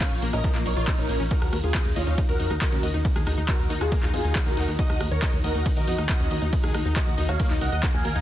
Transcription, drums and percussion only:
0.01 kick, clap, closed hi-hat, ride
0.11 closed hi-hat
0.22 open hi-hat
0.33 cross-stick, closed hi-hat
0.44 kick, closed hi-hat, ride
0.55 clap, closed hi-hat
0.66 open hi-hat
0.77 closed hi-hat
0.87 kick, clap, closed hi-hat, ride
0.98 closed hi-hat
1.09 open hi-hat
1.20 open hi-hat
1.31 kick, closed hi-hat, ride
1.42 cross-stick, closed hi-hat
1.53 cross-stick, open hi-hat
1.64 closed hi-hat
1.74 kick, clap, closed hi-hat, ride
1.85 closed hi-hat
1.96 open hi-hat
2.07 closed hi-hat
2.18 kick, closed hi-hat, ride
2.29 closed hi-hat
2.40 open hi-hat
2.51 cross-stick, closed hi-hat
2.61 kick, clap, closed hi-hat, ride
2.72 closed hi-hat
2.83 open hi-hat
2.94 closed hi-hat
3.05 kick, closed hi-hat, ride
3.16 cross-stick, closed hi-hat
3.27 cross-stick, open hi-hat
3.38 closed hi-hat
3.48 kick, clap, closed hi-hat, ride
3.59 closed hi-hat
3.70 open hi-hat
3.81 cross-stick, closed hi-hat
3.92 kick, closed hi-hat, ride
4.03 clap, closed hi-hat
4.14 open hi-hat
4.25 closed hi-hat
4.35 kick, clap, closed hi-hat, ride
4.46 closed hi-hat
4.57 open hi-hat
4.68 open hi-hat
4.79 kick, closed hi-hat, ride
4.90 cross-stick, closed hi-hat
5.01 cross-stick, open hi-hat
5.11 closed hi-hat
5.22 kick, clap, closed hi-hat, ride
5.33 closed hi-hat
5.44 open hi-hat
5.55 closed hi-hat
5.66 kick, closed hi-hat, ride
5.77 closed hi-hat
5.88 open hi-hat
5.98 cross-stick, closed hi-hat
6.09 kick, clap, closed hi-hat, ride
6.20 closed hi-hat
6.31 open hi-hat
6.42 closed hi-hat
6.53 kick, closed hi-hat, ride
6.64 cross-stick, closed hi-hat
6.74 cross-stick, open hi-hat
6.85 closed hi-hat
6.96 kick, clap, closed hi-hat, ride
7.07 closed hi-hat
7.18 open hi-hat
7.29 cross-stick, closed hi-hat
7.40 kick, closed hi-hat, ride
7.51 clap, closed hi-hat
7.61 open hi-hat
7.72 closed hi-hat
7.83 kick, clap, closed hi-hat, ride
7.94 closed hi-hat
8.05 open hi-hat
8.16 open hi-hat

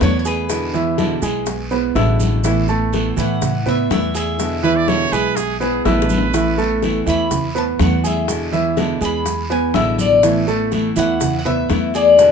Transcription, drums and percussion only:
0.01 high bongo, low bongo, high conga, short guiro, maracas
0.25 high bongo, short guiro, maracas
0.49 high bongo, high conga, long guiro, maracas
0.74 high conga, maracas
0.98 high bongo, high conga, short guiro, maracas
1.22 high bongo, high conga, short guiro, maracas
1.46 high bongo, high conga, long guiro, maracas
1.71 high bongo, high conga, maracas
1.95 high bongo, low bongo, high conga, short guiro, maracas
2.19 high bongo, high conga, short guiro, maracas
2.44 high bongo, high conga, long guiro, maracas
2.68 high bongo, high conga, maracas
2.93 high bongo, high conga, short guiro, maracas
3.17 high bongo, high conga, short guiro, maracas
3.42 high bongo, high conga, low conga, long guiro, maracas
3.66 high conga, low conga, maracas
3.90 high bongo, low bongo, high conga, short guiro, maracas
4.14 high bongo, short guiro, maracas
4.39 high bongo, high conga, long guiro, maracas
4.64 high conga, maracas
4.88 high bongo, high conga, short guiro, maracas
5.12 high bongo, high conga, short guiro, maracas
5.37 high bongo, high conga, long guiro, maracas
5.61 high bongo, high conga, maracas
5.85 high bongo, high conga, short guiro, maracas
6.02 high bongo
6.09 high conga, short guiro, maracas
6.18 low bongo
6.34 high bongo, long guiro, maracas
6.58 high bongo, high conga, maracas
6.83 high bongo, high conga, short guiro, maracas
7.07 high bongo, short guiro, maracas
7.31 high bongo, high conga, low conga, long guiro, maracas
7.56 high conga, maracas
7.79 high bongo, low bongo, high conga, short guiro, maracas
8.04 high bongo, high conga, short guiro, maracas
8.28 high bongo, high conga, long guiro, maracas
8.53 high conga, maracas
8.77 high bongo, high conga, short guiro, maracas
9.01 high bongo, high conga, short guiro, maracas
9.25 high bongo, high conga, long guiro, maracas
9.50 high bongo, high conga, maracas
9.74 high bongo, low bongo, high conga, short guiro, maracas
9.98 high bongo, high conga, short guiro, maracas
10.23 high bongo, long guiro, maracas
10.48 high bongo, high conga, maracas
10.72 high bongo, high conga, short guiro, maracas
10.96 high bongo, high conga, short guiro, maracas
11.20 high bongo, high conga, low conga, long guiro, maracas
11.45 high conga, low conga, maracas
11.69 high bongo, low bongo, high conga, short guiro, maracas
11.94 high bongo, short guiro, maracas
12.19 high bongo, high conga, long guiro, maracas

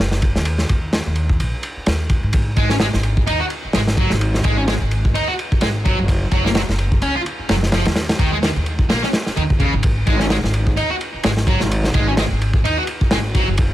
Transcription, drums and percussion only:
0.11 snare
0.22 kick, ride
0.35 snare
0.45 ride
0.58 snare
0.69 kick, ride
0.93 snare, ride
1.16 ride
1.29 kick
1.40 ride
1.63 ride
1.86 snare, ride
2.09 kick, ride
2.33 kick, ride
2.56 kick, ride
2.70 snare
2.80 snare, ride
2.94 snare
3.03 ride
3.17 kick
3.27 ride
3.50 ride
3.73 snare, ride
3.87 snare
3.97 kick, ride
4.10 snare
4.21 ride
4.34 snare
4.44 kick, ride
4.68 snare, ride
4.91 ride
5.05 kick
5.15 ride
5.39 ride
5.52 kick
5.61 snare, ride
5.85 kick, ride
6.08 kick, ride
6.31 kick, ride
6.46 snare
6.55 snare, ride
6.70 snare
6.79 ride
6.92 kick
7.02 ride
7.26 ride
7.49 snare, ride
7.63 snare
7.72 snare, ride
7.85 snare, ride
7.96 snare, ride
8.09 snare, ride
8.19 kick, ride
8.43 snare, ride
8.66 ride
8.79 kick
8.90 snare, ride
9.03 snare
9.13 snare, ride
9.26 snare
9.37 ride
9.50 kick
9.60 kick, ride
9.83 kick, ride
10.07 kick, ride
10.20 snare
10.30 snare, ride
10.44 snare
10.54 ride
10.67 kick
10.77 ride
11.01 ride
11.23 snare, ride
11.37 snare
11.47 kick, ride
11.60 snare
11.71 ride
11.84 snare
11.94 kick, ride
12.17 snare, ride
12.41 ride
12.53 kick
12.65 ride
12.87 ride
13.01 kick
13.11 snare, ride
13.35 kick, ride
13.58 kick, ride

